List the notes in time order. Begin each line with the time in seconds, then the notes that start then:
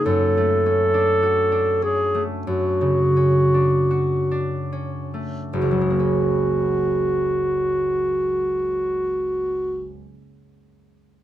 Already playing: C#4 F#4
0.05 F#2 A4
0.37 A3
0.66 C#4
0.94 D4
1.23 F#4
1.52 D4
1.82 C#4 G#4
2.14 A3
2.47 F#2 F#4
2.81 C#3
3.17 C#4
3.54 D4
3.91 F#4
4.31 D4
4.72 C#4
5.14 A3
5.52 F#1 F#4
5.62 C#2
5.71 F#3
5.81 G#3
5.90 A#3
5.99 C#4